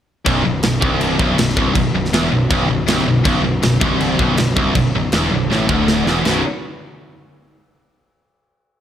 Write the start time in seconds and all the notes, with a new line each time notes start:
0.24 B0 B1 D3 F#3 B3 F#4, kick, crash
0.45 B0 B1
0.63 B0 B1, snare, crash
0.81 C1 C2, kick
1.01 crash
1.19 B0 B1, kick
1.38 B0 B1, snare, crash
1.49 snare
1.56 C1 C2, kick
1.75 B0 B1, kick, crash
1.93 B0 B1
2.05 snare
2.12 E1 E2, snare, crash
2.30 B0 B1
2.50 B0 B1, kick, crash
2.68 B0 B1
2.86 C1 C2, snare, crash
2.98 snare
3.05 B0 B1
3.24 B0 B1, kick, crash
3.43 B0 B1
3.62 B0 B1, snare, crash
3.80 C1 C2, kick
4.01 crash
4.19 B0 B1, kick
4.37 B0 B1, snare, crash
4.56 C1 C2, kick
4.75 B0 B1, kick, crash
4.94 B0 B1
5.11 E1 E2, snare, crash
5.31 B0 B1
5.49 A1 A2, snare
5.69 D1 D2, kick
5.88 snare
6.05 E1 E2, snare
6.23 B0 B1 F#2 B2, snare, splash